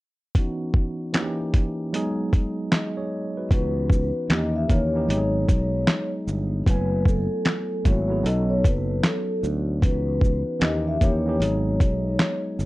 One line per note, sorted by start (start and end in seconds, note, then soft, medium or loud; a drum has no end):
0.35 1.11 E3 medium
0.35 1.15 B3 medium
0.35 1.13 C#4 medium
0.35 1.14 D#4 medium
0.35 kick loud
0.35 closed hi-hat medium
0.39 1.15 F#4 medium
0.74 kick medium
1.13 1.80 E3 medium
1.13 1.81 A#3 medium
1.13 1.81 C#4 medium
1.13 1.81 D#4 medium
1.13 1.23 F#4 medium
1.13 snare loud
1.13 clap medium
1.13 closed hi-hat medium
1.22 1.85 G4 medium
1.54 kick medium
1.54 closed hi-hat soft
1.93 2.91 F#3 medium
1.93 2.92 G#3 medium
1.93 2.92 B3 medium
1.93 2.92 D#4 medium
1.93 2.34 G#4 loud
1.93 closed hi-hat medium
2.33 kick medium
2.33 closed hi-hat soft
2.72 2.96 G#4 medium
2.72 2.96 D#5 medium
2.72 snare loud
2.72 clap medium
2.72 closed hi-hat medium
2.97 3.34 G#4 medium
2.97 3.34 C#5 medium
3.37 3.53 F#4 soft
3.37 3.74 B4 medium
3.51 4.11 C#2 loud
3.51 4.28 E3 medium
3.51 4.30 B3 medium
3.51 4.30 C#4 medium
3.51 4.31 D#4 medium
3.51 4.31 F#4 medium
3.51 4.27 B4 medium
3.51 kick loud
3.51 closed hi-hat medium
3.90 kick medium
3.90 shaker soft
4.29 4.66 D#2 medium
4.29 4.63 E3 medium
4.29 4.63 A#3 medium
4.29 4.64 C#4 medium
4.29 4.64 D#4 medium
4.29 4.65 G4 medium
4.29 4.53 D#5 medium
4.29 snare loud
4.29 clap medium
4.29 closed hi-hat medium
4.56 4.69 E5 medium
4.68 5.06 D#2 medium
4.68 4.87 E3 medium
4.68 4.87 A#3 medium
4.68 4.88 C#4 medium
4.68 4.88 D#4 medium
4.68 4.88 A#4 medium
4.68 6.09 C#5 medium
4.68 kick medium
4.68 closed hi-hat soft
4.68 shaker soft
4.94 5.09 E3 medium
4.94 5.09 A#3 medium
4.94 5.10 C#4 medium
4.94 5.09 D#4 medium
4.94 5.10 G4 medium
5.08 5.45 G#1 loud
5.08 6.36 F#3 medium
5.08 6.37 G#3 medium
5.08 6.37 B3 medium
5.08 6.38 D#4 medium
5.08 5.18 G4 medium
5.08 closed hi-hat medium
5.18 6.41 G#4 medium
5.49 5.85 B1 medium
5.49 kick medium
5.49 closed hi-hat soft
5.49 shaker soft
5.87 snare loud
5.87 clap medium
5.87 closed hi-hat medium
6.27 6.64 G1 medium
6.27 shaker soft
6.66 7.26 F#1 loud
6.66 7.58 F#3 medium
6.66 7.58 A3 medium
6.66 7.58 B3 medium
6.66 7.59 E4 medium
6.66 7.07 B4 medium
6.66 7.59 G#5 medium
6.66 kick loud
6.66 closed hi-hat medium
7.05 7.82 A4 medium
7.05 kick medium
7.05 shaker soft
7.45 snare loud
7.45 clap medium
7.45 closed hi-hat medium
7.84 8.22 G#1 medium
7.84 8.03 F#3 medium
7.84 8.03 A3 medium
7.84 8.04 B3 medium
7.84 8.04 E4 medium
7.84 8.05 F#4 medium
7.84 8.22 C#5 medium
7.84 kick medium
7.84 closed hi-hat soft
7.84 shaker soft
8.08 8.22 F#3 medium
8.08 8.24 A3 medium
8.08 8.22 B3 medium
8.08 8.25 E4 medium
8.08 8.25 G#4 medium
8.23 8.61 B1 medium
8.23 9.52 F#3 medium
8.23 9.52 B3 medium
8.23 9.52 C#4 medium
8.23 9.53 D#4 medium
8.23 9.53 A4 medium
8.23 8.47 D#5 medium
8.23 closed hi-hat medium
8.50 8.64 C#5 medium
8.64 9.01 F#1 medium
8.64 9.00 B4 medium
8.64 kick medium
8.64 closed hi-hat soft
8.64 shaker soft
9.04 9.40 A4 medium
9.04 snare loud
9.04 clap medium
9.04 closed hi-hat medium
9.43 9.80 D2 medium
9.43 shaker soft
9.82 10.42 C#2 loud
9.82 10.58 E3 medium
9.82 10.62 B3 medium
9.82 10.59 C#4 medium
9.82 10.60 D#4 medium
9.82 10.63 F#4 medium
9.82 10.58 B4 loud
9.82 kick loud
9.82 closed hi-hat medium
10.21 kick medium
10.21 shaker soft
10.59 10.98 D#2 medium
10.59 10.94 E3 medium
10.59 10.94 A#3 medium
10.59 10.94 C#4 medium
10.59 10.95 D#4 medium
10.59 10.95 G4 medium
10.59 10.84 D#5 medium
10.59 snare loud
10.59 clap medium
10.59 closed hi-hat medium
10.87 11.00 E5 medium
11.01 11.38 D#2 medium
11.01 11.19 E3 medium
11.01 11.19 A#3 medium
11.01 11.20 C#4 medium
11.01 11.20 D#4 medium
11.01 11.21 G4 medium
11.01 12.41 C#5 medium
11.01 kick medium
11.01 closed hi-hat soft
11.01 shaker soft
11.26 11.40 E3 medium
11.26 11.41 A#3 medium
11.26 11.41 C#4 medium
11.26 11.41 D#4 medium
11.26 11.42 G4 medium
11.39 11.77 G#1 loud
11.39 12.66 F#3 medium
11.39 12.66 G#3 medium
11.39 12.66 B3 medium
11.39 12.66 D#4 medium
11.39 12.66 G#4 medium
11.39 closed hi-hat medium
11.80 12.17 B1 medium
11.80 kick medium
11.80 closed hi-hat soft
11.80 shaker soft
12.19 snare loud
12.19 clap medium
12.19 closed hi-hat medium
12.59 12.66 G1 medium
12.59 shaker soft